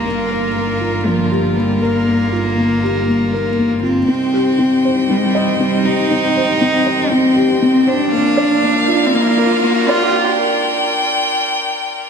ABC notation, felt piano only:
X:1
M:4/4
L:1/8
Q:1/4=119
K:Cm
V:1 name="Felt piano"
B, B B, F B, G B, B | B, F B, G B, B B, F | C G C c C e C G | C c C e C G C c |
B, d B, F B, B B, d | z8 |]